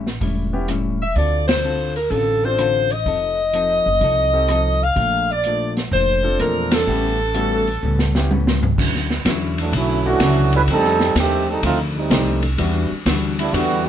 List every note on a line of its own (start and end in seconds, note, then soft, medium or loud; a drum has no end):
0.00 0.17 A1 medium
0.07 snare soft
0.21 1.12 E1 medium
0.21 0.55 A2 medium
0.21 0.55 G3 medium
0.21 0.56 C#4 medium
0.21 0.56 E4 medium
0.21 kick soft
0.21 open hi-hat soft
0.53 0.67 B3 medium
0.53 0.67 C#4 medium
0.53 0.67 E4 medium
0.53 0.67 G4 medium
0.68 1.02 A2 medium
0.68 1.03 G3 medium
0.68 1.03 C#4 medium
0.68 1.03 E4 medium
0.68 cross-stick medium
0.68 closed hi-hat medium
1.02 1.16 E5 medium
1.16 2.07 D2 medium
1.16 1.50 D3 soft
1.16 1.50 C4 soft
1.16 1.51 F4 medium
1.16 1.51 A4 medium
1.16 1.49 D5 medium
1.16 kick soft
1.16 open hi-hat soft
1.48 1.93 C5 medium
1.48 snare medium
1.48 ride medium
1.64 1.98 D3 medium
1.64 1.98 C4 medium
1.64 1.98 F4 medium
1.64 1.98 A4 medium
1.96 2.12 A#4 medium
1.96 open hi-hat soft
2.10 3.02 A1 medium
2.10 2.46 D3 soft
2.10 2.47 C4 soft
2.10 2.47 F4 soft
2.10 2.43 A4 medium
2.10 kick soft
2.10 open hi-hat soft
2.15 2.47 A4 soft
2.44 2.58 C4 medium
2.44 2.58 D4 medium
2.44 2.58 F4 medium
2.44 2.58 A4 medium
2.44 2.92 C5 medium
2.58 2.93 D3 medium
2.58 2.93 C4 medium
2.58 2.93 F4 medium
2.58 2.93 A4 medium
2.58 cross-stick medium
2.58 closed hi-hat medium
2.90 4.82 D#5 loud
2.90 open hi-hat soft
3.05 3.82 F1 medium
3.05 3.40 F3 soft
3.05 3.40 C4 soft
3.05 3.41 D#4 soft
3.05 3.41 A4 medium
3.05 kick soft
3.05 open hi-hat soft
3.53 3.88 F3 medium
3.53 3.88 C4 medium
3.53 3.88 D#4 medium
3.53 3.89 A4 medium
3.53 closed hi-hat soft
3.86 4.00 F#1 medium
4.01 4.93 C2 medium
4.01 4.36 F3 medium
4.01 4.36 C4 medium
4.01 4.37 D#4 medium
4.01 4.37 A4 medium
4.01 kick soft
4.01 open hi-hat soft
4.33 4.47 C4 medium
4.33 4.48 D#4 medium
4.33 4.48 G4 medium
4.33 4.48 A4 medium
4.48 4.84 F3 medium
4.48 4.84 C4 medium
4.48 4.84 D#4 medium
4.48 4.84 A4 medium
4.48 cross-stick medium
4.48 closed hi-hat medium
4.84 5.30 F5 loud
4.96 5.88 A#1 medium
4.96 5.31 A#2 soft
4.96 5.32 F3 medium
4.96 5.32 A3 medium
4.96 5.32 D4 medium
4.96 kick soft
4.96 open hi-hat soft
5.31 5.74 D5 medium
5.44 5.79 A#2 medium
5.44 5.80 F3 medium
5.44 5.80 A3 medium
5.44 5.80 D4 medium
5.44 closed hi-hat medium
5.77 snare soft
5.77 open hi-hat soft
5.91 6.36 F1 medium
5.91 6.27 A#2 soft
5.91 6.27 F3 soft
5.91 6.27 A3 medium
5.91 6.28 D4 medium
5.91 6.37 C5 loud
5.91 kick soft
5.91 open hi-hat soft
6.23 6.84 C4 medium
6.23 6.84 D4 medium
6.23 6.84 F4 medium
6.23 6.84 A4 medium
6.39 6.84 E2 medium
6.39 6.74 A#2 medium
6.39 6.74 F3 medium
6.39 6.74 A3 medium
6.39 6.74 D4 medium
6.39 6.73 A#4 loud
6.39 cross-stick medium
6.39 closed hi-hat medium
6.71 8.32 A4 medium
6.71 snare medium
6.71 ride medium
6.87 7.79 A1 medium
6.87 7.21 A2 soft
6.87 7.22 G3 soft
6.87 7.17 B3 medium
6.87 7.22 B3 soft
6.87 7.17 C#4 medium
6.87 7.22 C#4 medium
6.87 7.17 E4 medium
6.87 7.17 G4 medium
7.34 7.69 A2 medium
7.34 7.69 G3 medium
7.34 7.64 B3 medium
7.34 7.69 B3 medium
7.34 7.64 C#4 soft
7.34 7.70 C#4 medium
7.34 7.64 E4 soft
7.34 7.64 F#4 medium
7.34 closed hi-hat medium
7.67 open hi-hat soft
7.83 8.74 C#2 medium
7.83 8.17 A2 medium
7.83 8.17 G3 medium
7.83 8.18 B3 medium
7.83 8.18 C#4 medium
7.99 snare medium
8.15 8.29 B3 medium
8.15 8.30 C#4 medium
8.15 8.30 E4 medium
8.15 8.30 G4 medium
8.15 snare medium
8.30 8.64 A2 medium
8.30 8.65 G3 medium
8.30 8.65 B3 medium
8.30 8.66 C#4 medium
8.30 high tom medium
8.47 snare medium
8.63 floor tom medium
8.78 9.24 D2 medium
8.78 9.12 D3 medium
8.78 9.13 F#3 medium
8.78 9.13 C#4 medium
8.78 9.13 E4 medium
8.78 kick medium
8.78 crash medium
8.95 snare soft
9.10 snare soft
9.25 9.72 E2 medium
9.25 9.60 D3 medium
9.25 9.60 F#3 medium
9.25 9.61 C#4 medium
9.25 9.61 E4 medium
9.25 kick soft
9.25 snare medium
9.25 hi-hat pedal medium
9.25 ride medium
9.58 9.74 E3 medium
9.58 9.74 F#3 medium
9.58 9.74 A3 medium
9.58 9.74 D4 medium
9.58 ride soft
9.72 10.19 B1 medium
9.72 10.08 D3 soft
9.72 10.05 F#3 medium
9.72 10.09 F#3 soft
9.72 10.04 A3 medium
9.72 10.05 C#4 medium
9.72 10.09 C#4 medium
9.72 10.05 E4 medium
9.72 kick soft
9.72 ride medium
9.77 10.09 E4 medium
10.06 10.55 E3 medium
10.06 10.66 A3 medium
10.06 10.54 A3 medium
10.06 10.66 C#4 medium
10.06 10.53 C#4 medium
10.06 10.66 D4 medium
10.06 10.66 E4 medium
10.06 10.66 F#4 medium
10.06 10.55 F#4 loud
10.20 10.67 C#2 medium
10.20 10.55 D3 medium
10.20 10.56 F#3 medium
10.20 10.56 C#4 medium
10.20 10.56 E4 medium
10.20 kick soft
10.20 snare medium
10.20 hi-hat pedal medium
10.20 ride medium
10.53 10.61 G3 medium
10.53 10.61 C#4 medium
10.53 10.62 E4 medium
10.53 10.62 B4 loud
10.53 ride soft
10.68 11.15 F2 medium
10.68 11.04 F2 soft
10.68 11.04 D#3 medium
10.68 11.14 G3 medium
10.68 11.14 C4 medium
10.68 11.14 D#4 loud
10.68 11.14 A4 loud
10.68 kick soft
10.68 ride medium
10.72 11.04 A3 medium
10.72 11.05 D4 medium
10.84 snare soft
11.00 snare medium
11.15 11.62 D#2 medium
11.15 11.50 F2 medium
11.15 11.50 D#3 medium
11.15 11.51 A3 medium
11.15 11.50 A3 medium
11.15 11.48 C4 medium
11.15 11.51 D4 medium
11.15 11.49 G4 loud
11.15 kick soft
11.15 snare medium
11.15 hi-hat pedal medium
11.15 ride medium
11.49 11.63 G3 medium
11.49 11.63 C4 medium
11.49 11.63 D#4 medium
11.49 11.63 A4 medium
11.63 12.10 D2 medium
11.63 11.97 F2 soft
11.63 11.98 D#3 medium
11.63 11.79 A3 medium
11.63 11.98 A3 medium
11.63 11.79 C4 medium
11.63 11.99 D4 medium
11.63 11.79 D#4 medium
11.63 11.79 F4 medium
11.63 kick soft
11.63 ride medium
11.97 12.42 G3 medium
11.97 12.42 A3 medium
11.97 12.41 C4 medium
11.97 12.41 D#4 medium
12.10 12.57 C2 medium
12.10 12.45 F2 medium
12.10 12.46 D#3 medium
12.10 12.41 A3 medium
12.10 12.46 A3 medium
12.10 12.40 C4 medium
12.10 12.41 D4 medium
12.10 12.46 D4 medium
12.10 12.41 D#4 medium
12.10 12.41 G4 medium
12.10 kick soft
12.10 snare medium
12.10 hi-hat pedal medium
12.10 ride medium
12.42 ride soft
12.58 12.89 E2 medium
12.58 12.93 E3 medium
12.58 12.88 G3 medium
12.58 12.93 G3 medium
12.58 12.88 B3 medium
12.58 12.88 D4 soft
12.58 12.94 D4 medium
12.58 12.89 E4 medium
12.58 12.89 F#4 medium
12.58 12.94 F#4 medium
12.58 kick soft
12.58 ride medium
12.91 muted upright bass stroke soft
13.06 13.53 D2 medium
13.06 13.41 E3 medium
13.06 13.41 G3 medium
13.06 13.42 D4 medium
13.06 13.41 F#4 medium
13.06 kick soft
13.06 snare medium
13.06 hi-hat pedal soft
13.06 ride medium
13.39 13.52 G3 medium
13.39 13.52 B3 medium
13.39 13.54 D4 medium
13.39 13.54 E4 medium
13.39 ride medium
13.52 13.89 E2 medium
13.52 13.83 D3 medium
13.52 13.89 E3 soft
13.52 13.86 G3 medium
13.52 13.83 G3 medium
13.52 13.89 G3 medium
13.52 13.83 B3 medium
13.52 13.84 B3 medium
13.52 13.83 D4 medium
13.52 13.89 D4 medium
13.52 13.83 E4 medium
13.52 13.82 F#4 medium
13.52 13.84 F#4 medium
13.52 kick soft
13.52 ride medium
13.56 13.89 F#4 medium
13.83 13.89 D3 medium
13.83 13.89 B3 medium
13.83 13.89 F#4 medium
13.83 13.89 G4 medium